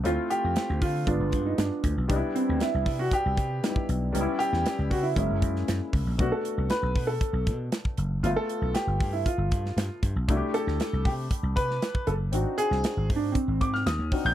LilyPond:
<<
  \new Staff \with { instrumentName = "Grand piano" } { \time 4/4 \key c \lydian \tempo 4 = 117 r8 g'4 f'8 d'8. ees'16 d'8. r16 | r8 c'8 e'8. fis'16 g'4. r8 | r8 g'4 fis'16 e'16 e'4. r8 | fis'16 a'8. b'8. a'4 r4 r16 |
f'16 a'8. g'8. e'16 f'4. r8 | r8 a'4 g'8 r8 b'4 a'8 | r8 aes'8~ \tuplet 3/2 { aes'8. r16 d'8 } c'8 d'''16 f'''16 ees'''8. g'''16 | }
  \new Staff \with { instrumentName = "Grand piano" } { \time 4/4 \key c \lydian <a c' e' f'>2 <aes b d' f'>2 | <g b d' ees' e'>2. <g b d' ees' e'>4 | <g b cis' ees' e'>2 <aes ais cis' e'>2 | <a b d' fis'>1 |
<a b f' e''>1 | <a d' e' fis' g'>1 | <c' d' ees' ges'>2.~ <c' d' ees' ges'>8 <c' d' ees' ges'>8 | }
  \new Staff \with { instrumentName = "Slap bass" } { \clef bass \time 4/4 \key c \lydian d,16 r8 f,16 r16 d,16 d8 g,,16 g,,16 g,8 g,16 r16 d,16 b,,16 | c,16 r8 d,16 r16 c,16 c8 r16 c,16 c8 r8 b,,8 | cis,16 r8 e,16 r16 cis,16 cis8 fis,,16 fis,,16 fis,8 fis,16 r16 cis,16 ais,,16 | b,,16 r8 c,16 r16 b,,16 b,8 r16 b,,16 b,8 r8 fis,,8 |
g,,16 r8 b,,16 r16 g,,16 g,8 r16 g,,16 g,8 g,16 r16 g,16 b,,16 | c,16 r8 d,16 r16 c,16 c8 r16 c,16 c8 r8 fis,,8 | aes,,16 r8 c,16 r16 aes,,16 aes,8 r16 aes,,16 aes,8 ees,16 ees,16 r16 bes,,16 | }
  \new DrumStaff \with { instrumentName = "Drums" } \drummode { \time 4/4 hh8 hh8 <hh sn>8 <hho bd>8 <hh bd>8 <hh bd>8 <hh sn>8 <hh bd>8 | <hh bd>8 hh8 <hh sn>8 <hho bd>8 <hh bd>8 <hh bd>8 <hh sn>16 bd16 hh8 | hh8 hh16 sn16 <hh sn>8 <hho bd>8 <hh bd>8 <hh bd>16 sn16 <hh sn>8 <hho bd>8 | <hh bd>8 hh8 <hh sn>8 <hho bd>8 <hh bd>8 <hh bd>8 <hh sn>16 bd16 hh8 |
hh8 hh8 <hh sn>8 <hho bd>8 <hh bd>8 <hh bd>16 sn16 <hh sn>8 <hh bd>8 | <hh bd>8 hh16 sn16 <hh sn>8 <hho bd>8 <hh bd>8 <hh bd>16 sn16 <hh sn>16 bd16 hh8 | hh8 hh16 sn16 <hh sn>8 <hho bd>8 <hh bd>8 <hh bd>16 sn16 <hh sn>8 <hho bd>8 | }
>>